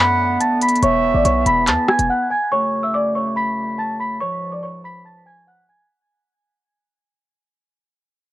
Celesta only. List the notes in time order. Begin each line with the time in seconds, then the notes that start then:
Already playing: B5
0.00 B6
0.40 A5 A6
0.62 B5 B6
0.83 C#5 C#6
1.15 D5 D6
1.25 C#5 C#6
1.46 B5 B6
1.67 A5 A6
1.89 G#5 G#6
2.09 F#5 F#6
2.30 G#5 G#6
2.52 C#5 C#6
2.83 E5 E6
2.94 D5 D6
3.15 C#5 C#6
3.36 B5 B6
3.78 A5 A6
4.00 B5 B6
4.21 C#5 C#6
4.52 D5 D6
4.63 C#5 C#6
4.84 B5 B6
5.05 A5 A6
5.26 G#5 G#6
5.47 F#5 F#6
5.69 G#5 G#6